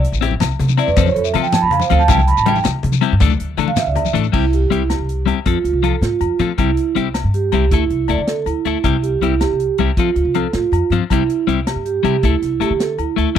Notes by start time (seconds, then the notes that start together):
Already playing: C2
0.04 closed hi-hat
0.12 A1, shekere
0.21 C4 E4 G4, closed hi-hat, low conga
0.31 high conga, low conga
0.40 C2, snare, closed hi-hat, muted conga, low agogo, shekere
0.50 low conga, shekere
0.59 C3, closed hi-hat, low conga, shekere
0.68 high conga, shekere
0.77 C4 E4 D5, muted clean electric guitar stroke, closed hi-hat, low agogo, shekere
0.87 E2 B4, low conga, shekere
0.96 F2 F3 C4 A4 C5, muted clean electric guitar stroke, kick, closed hi-hat, muted conga, low conga, shekere
1.05 C#5, high conga, shekere
1.14 F2 A4, closed hi-hat, low conga
1.24 E5, low conga, shekere
1.34 F3 C4 F4 A4, closed hi-hat, low conga, low agogo, shekere
1.42 G5, low conga, shekere
1.52 A5, snare, closed hi-hat, muted conga, shekere
1.62 F2 B5
1.71 F5, closed hi-hat, low conga, low agogo
1.80 C5, high conga, low conga, shekere
1.90 D2 F3 C4 F4 A4 F5, closed hi-hat, shekere
1.99 A5, shekere
2.08 C2 G3 C4 E4 G4 G5, kick, closed hi-hat, muted conga, low conga, low agogo, shekere
2.18 A5, high conga, shekere
2.28 B5, closed hi-hat
2.37 A1 A5, shekere
2.46 G3 E4 G4 G5, muted clean electric guitar stroke, closed hi-hat, low conga
2.56 high conga, low conga, shekere
2.64 C2, snare, closed hi-hat, muted conga, low agogo, shekere
2.75 low conga
2.83 C3, closed hi-hat, low conga
2.92 high conga, shekere
3.01 G3 C4 E4 G4, snare, closed hi-hat, low agogo
3.12 G2
3.20 D2 E3 A3 D4 A4, kick, closed hi-hat, muted conga, low conga, shekere
3.30 high conga, low conga, shekere
3.40 D2, closed hi-hat
3.48 low conga
3.58 D3 E3 A3 D4 A4, closed hi-hat, low conga, low agogo
3.68 F5, high conga
3.76 E5, snare, closed hi-hat, muted conga, shekere
3.86 D2 D5, shekere
3.96 E5, closed hi-hat, low conga, low agogo
4.05 high conga, shekere
4.13 A1 E3 A3 D4 A4, closed hi-hat, low conga
4.23 shekere
4.32 C2 G3 C4 E4 G4, kick, crash, low agogo
4.53 G4, closed hi-hat
4.70 C2 G3 C4 E4 G4, closed hi-hat
4.90 G4, snare, closed hi-hat, low agogo
4.99 C2
5.09 closed hi-hat
5.26 E2 G3 C4 E4 G4, closed hi-hat, low agogo
5.46 F2 F3 C4 F4 A4, muted clean electric guitar stroke, kick, closed hi-hat
5.64 D2 F4, closed hi-hat
5.73 C2
5.83 F3 F4 A4, muted clean electric guitar stroke, closed hi-hat, low agogo
6.01 A2 F4, snare, closed hi-hat
6.21 F2, closed hi-hat, low agogo
6.39 A2 F3 C4 F4 A4, closed hi-hat
6.58 C2 G3 C4 E4 G4, kick, closed hi-hat, low agogo
6.77 closed hi-hat
6.95 C2 G3 C4 E4 G4, closed hi-hat
7.14 snare, closed hi-hat, low agogo
7.24 G2
7.34 G4, closed hi-hat
7.52 C2 G3 C4 E4 G4, closed hi-hat, low agogo
7.71 D2 A3 E4 A4, kick, closed hi-hat
7.90 C2, closed hi-hat
8.08 D2 A3 E4 A4 D5, closed hi-hat, low agogo
8.18 D3
8.27 A4, snare, closed hi-hat
8.46 D2 E4, closed hi-hat, low agogo
8.65 D2 A3 E4 A4, closed hi-hat
8.84 C2 G3 C4 E4 G4, kick, closed hi-hat, low agogo
9.02 G4, closed hi-hat
9.21 C2 G3 C4 E4 G4, closed hi-hat
9.40 G4, snare, closed hi-hat, low agogo
9.51 C2
9.60 closed hi-hat
9.78 C2 G3 C4 E4 G4, closed hi-hat, low agogo
9.97 F2 F3 C4 F4 A4, kick, closed hi-hat
10.16 D2 F4, closed hi-hat
10.25 C2
10.34 F3 C4 F4, closed hi-hat, low agogo
10.53 A2 F4, snare, closed hi-hat
10.72 F2, closed hi-hat, low agogo
10.90 G2 F3 C4 F4, muted clean electric guitar stroke, closed hi-hat
11.10 C2 G3 C4 E4 G4, kick, closed hi-hat, low agogo
11.30 closed hi-hat
11.47 C2 G3 C4 E4 G4, closed hi-hat
11.67 G4, snare, closed hi-hat, low agogo
11.76 G2
11.86 G4, closed hi-hat
12.03 C3 G3 C4 E4 G4, closed hi-hat, low agogo
12.23 D2 A3 E4 A4, kick, closed hi-hat
12.42 C2, snare, closed hi-hat
12.60 D2 A3 E4 G4 A4, closed hi-hat, low agogo
12.70 D3
12.80 A4, snare, closed hi-hat
12.98 D2 E4, closed hi-hat, low agogo
13.16 D2 A3 E4 A4, closed hi-hat
13.35 G3 C4